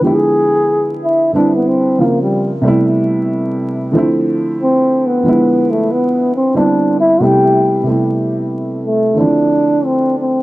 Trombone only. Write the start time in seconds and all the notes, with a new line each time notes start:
0.04 G#4
1.03 E4
1.35 D4
1.56 B3
1.67 C4
2.00 A#3
2.22 G3
4.62 C4
5.06 B3
5.71 A3
5.92 B3
6.35 C4
6.56 D4
7.00 E4
7.22 G4
8.86 A3
9.19 D4
9.85 C4
10.19 C4